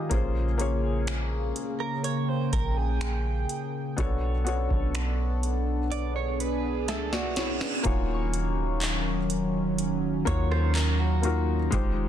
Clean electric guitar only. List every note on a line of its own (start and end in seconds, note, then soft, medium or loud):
1.80 2.03 A#4 medium
2.04 2.29 C#5 medium
2.29 2.52 C5 medium
2.53 2.77 A#4 medium
2.77 3.94 G#4 medium
5.92 6.15 D5 medium
6.16 6.40 C#5 medium
6.40 6.86 B4 medium
6.88 7.11 A4 medium
7.13 7.82 F#4 medium
10.27 10.50 C#5 medium
10.51 10.74 C5 medium
10.75 10.98 A#4 medium
11.00 11.69 F#4 medium